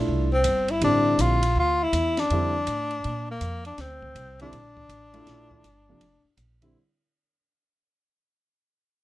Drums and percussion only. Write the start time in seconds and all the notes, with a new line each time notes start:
0.44 hi-hat pedal, ride
0.68 ride
0.81 ride
1.19 hi-hat pedal, ride
1.43 ride
1.93 hi-hat pedal, ride
2.17 snare, ride
2.30 ride
2.67 hi-hat pedal, ride
2.91 ride
3.04 ride
3.41 hi-hat pedal, ride
3.65 ride
3.78 snare, ride
4.02 kick
4.16 hi-hat pedal, ride
4.39 ride
4.53 ride
4.77 kick
4.89 hi-hat pedal, ride
5.14 ride
5.27 snare, ride
5.51 kick
5.64 hi-hat pedal, ride
6.01 ride
6.37 hi-hat pedal, ride
6.62 ride